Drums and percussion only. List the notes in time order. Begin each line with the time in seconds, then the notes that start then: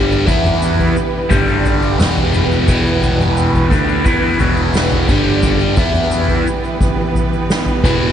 0.12 shaker
0.28 kick, floor tom, shaker
0.45 mid tom, shaker
0.62 shaker
0.79 floor tom, shaker
0.96 shaker
1.31 kick, floor tom, shaker
1.48 shaker
1.65 floor tom, shaker
1.82 shaker
2.00 snare, mid tom, shaker
2.17 floor tom, shaker
2.34 mid tom, shaker
2.51 shaker
2.68 kick, floor tom, shaker
2.86 shaker
3.02 floor tom, shaker
3.20 mid tom, shaker
3.37 shaker
3.54 floor tom, shaker
3.71 kick, shaker
3.89 shaker
4.06 kick, floor tom, shaker
4.39 floor tom, shaker
4.57 shaker
4.74 snare, shaker
4.91 floor tom, shaker
5.08 kick, shaker
5.42 kick, floor tom, shaker
5.60 shaker
5.77 kick, floor tom, shaker
5.94 mid tom, shaker
6.11 shaker
6.28 floor tom, shaker
6.47 shaker
6.64 shaker
6.81 kick, floor tom, shaker
7.15 floor tom, shaker
7.33 shaker
7.50 snare, shaker
7.66 floor tom, shaker
7.84 kick, shaker